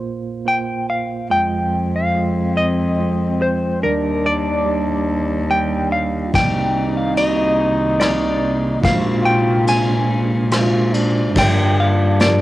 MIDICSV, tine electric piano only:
0, 0, Header, 1, 2, 480
1, 0, Start_track
1, 0, Tempo, 837989
1, 756, Time_signature, 3, 2, 24, 8
1, 7111, End_track
2, 0, Start_track
2, 0, Title_t, "Tine electric piano"
2, 0, Program_c, 0, 4
2, 0, Control_c, 0, 64, 127
2, 0, Note_on_c, 0, 34, 52
2, 0, Note_on_c, 0, 46, 52
2, 0, Note_on_c, 0, 58, 61
2, 0, Note_on_c, 0, 65, 57
2, 0, Note_on_c, 0, 72, 67
2, 182, Note_off_c, 0, 58, 0
2, 183, Note_off_c, 0, 65, 0
2, 186, Note_off_c, 0, 72, 0
2, 261, Note_on_c, 0, 58, 58
2, 261, Note_on_c, 0, 65, 56
2, 265, Note_on_c, 0, 72, 67
2, 670, Note_off_c, 0, 58, 0
2, 670, Note_off_c, 0, 65, 0
2, 672, Note_off_c, 0, 72, 0
2, 730, Note_off_c, 0, 34, 0
2, 731, Note_off_c, 0, 46, 0
2, 744, Note_on_c, 0, 56, 69
2, 745, Note_on_c, 0, 65, 61
2, 747, Note_on_c, 0, 29, 54
2, 749, Note_on_c, 0, 41, 53
2, 751, Note_on_c, 0, 75, 72
2, 762, Control_c, 0, 64, 0
2, 875, Control_c, 0, 64, 127
2, 1151, Note_off_c, 0, 56, 0
2, 1152, Note_off_c, 0, 65, 0
2, 1155, Note_off_c, 0, 75, 0
2, 1228, Note_on_c, 0, 56, 59
2, 1234, Note_on_c, 0, 65, 48
2, 1240, Note_on_c, 0, 75, 63
2, 1634, Note_off_c, 0, 56, 0
2, 1637, Note_off_c, 0, 65, 0
2, 1639, Note_off_c, 0, 75, 0
2, 1712, Note_on_c, 0, 56, 56
2, 1714, Note_on_c, 0, 65, 49
2, 1719, Note_on_c, 0, 75, 61
2, 2114, Note_off_c, 0, 56, 0
2, 2116, Note_off_c, 0, 65, 0
2, 2118, Note_off_c, 0, 75, 0
2, 2172, Note_off_c, 0, 29, 0
2, 2172, Note_off_c, 0, 41, 0
2, 2195, Note_on_c, 0, 55, 71
2, 2199, Note_on_c, 0, 39, 57
2, 2199, Note_on_c, 0, 51, 55
2, 2199, Note_on_c, 0, 62, 66
2, 2201, Note_on_c, 0, 74, 77
2, 2206, Control_c, 0, 64, 0
2, 2317, Control_c, 0, 64, 127
2, 2594, Note_off_c, 0, 55, 0
2, 2596, Note_off_c, 0, 62, 0
2, 2597, Note_off_c, 0, 74, 0
2, 2666, Note_on_c, 0, 55, 59
2, 2669, Note_on_c, 0, 62, 55
2, 2673, Note_on_c, 0, 74, 65
2, 3068, Note_off_c, 0, 55, 0
2, 3069, Note_off_c, 0, 62, 0
2, 3071, Note_off_c, 0, 74, 0
2, 3151, Note_on_c, 0, 55, 61
2, 3151, Note_on_c, 0, 62, 55
2, 3159, Note_on_c, 0, 74, 65
2, 3549, Note_off_c, 0, 55, 0
2, 3549, Note_off_c, 0, 62, 0
2, 3553, Note_off_c, 0, 74, 0
2, 3608, Note_off_c, 0, 39, 0
2, 3608, Note_off_c, 0, 51, 0
2, 3628, Note_on_c, 0, 58, 74
2, 3631, Note_on_c, 0, 36, 56
2, 3631, Note_on_c, 0, 63, 66
2, 3632, Note_on_c, 0, 48, 56
2, 3633, Note_on_c, 0, 74, 83
2, 3638, Control_c, 0, 64, 0
2, 3721, Control_c, 0, 64, 127
2, 4026, Note_off_c, 0, 58, 0
2, 4027, Note_off_c, 0, 63, 0
2, 4029, Note_off_c, 0, 74, 0
2, 4107, Note_on_c, 0, 58, 58
2, 4109, Note_on_c, 0, 63, 56
2, 4112, Note_on_c, 0, 75, 65
2, 4503, Note_off_c, 0, 58, 0
2, 4504, Note_off_c, 0, 63, 0
2, 4506, Note_off_c, 0, 75, 0
2, 4580, Note_on_c, 0, 58, 60
2, 4585, Note_on_c, 0, 63, 55
2, 4587, Note_on_c, 0, 74, 62
2, 4979, Note_off_c, 0, 58, 0
2, 4982, Note_off_c, 0, 63, 0
2, 4983, Note_off_c, 0, 74, 0
2, 5039, Note_off_c, 0, 36, 0
2, 5039, Note_off_c, 0, 48, 0
2, 5065, Note_on_c, 0, 56, 78
2, 5069, Control_c, 0, 64, 0
2, 5069, Note_on_c, 0, 46, 59
2, 5070, Note_on_c, 0, 62, 71
2, 5071, Note_on_c, 0, 34, 61
2, 5071, Note_on_c, 0, 72, 85
2, 5154, Control_c, 0, 64, 127
2, 5462, Note_off_c, 0, 56, 0
2, 5465, Note_off_c, 0, 62, 0
2, 5465, Note_off_c, 0, 72, 0
2, 5540, Note_on_c, 0, 56, 60
2, 5545, Note_on_c, 0, 62, 57
2, 5548, Note_on_c, 0, 72, 70
2, 5943, Note_off_c, 0, 56, 0
2, 5945, Note_off_c, 0, 62, 0
2, 5946, Note_off_c, 0, 72, 0
2, 6022, Note_on_c, 0, 56, 66
2, 6026, Note_on_c, 0, 62, 57
2, 6031, Note_on_c, 0, 72, 70
2, 6426, Note_off_c, 0, 56, 0
2, 6428, Note_off_c, 0, 62, 0
2, 6430, Note_off_c, 0, 72, 0
2, 6489, Note_off_c, 0, 46, 0
2, 6490, Note_off_c, 0, 34, 0
2, 6510, Note_on_c, 0, 55, 77
2, 6510, Note_on_c, 0, 65, 72
2, 6512, Note_on_c, 0, 43, 63
2, 6514, Note_on_c, 0, 31, 61
2, 6515, Note_on_c, 0, 70, 84
2, 6516, Control_c, 0, 64, 0
2, 6609, Control_c, 0, 64, 127
2, 6909, Note_off_c, 0, 55, 0
2, 6909, Note_off_c, 0, 65, 0
2, 6911, Note_off_c, 0, 70, 0
2, 6989, Note_on_c, 0, 55, 61
2, 6993, Note_on_c, 0, 65, 54
2, 6995, Note_on_c, 0, 70, 69
2, 7111, Note_off_c, 0, 31, 0
2, 7111, Note_off_c, 0, 43, 0
2, 7111, Note_off_c, 0, 55, 0
2, 7111, Note_off_c, 0, 65, 0
2, 7111, Note_off_c, 0, 70, 0
2, 7111, End_track
0, 0, End_of_file